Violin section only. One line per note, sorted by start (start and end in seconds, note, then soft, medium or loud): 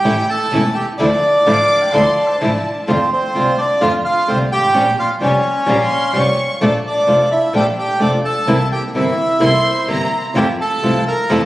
1.47 1.90 D6 medium
1.94 2.17 C6 medium
2.18 2.85 A5 medium
5.69 5.80 A#5 medium
5.81 6.14 C6 medium
6.15 6.50 C#6 medium
9.42 9.86 C6 loud
9.90 10.22 A#5 medium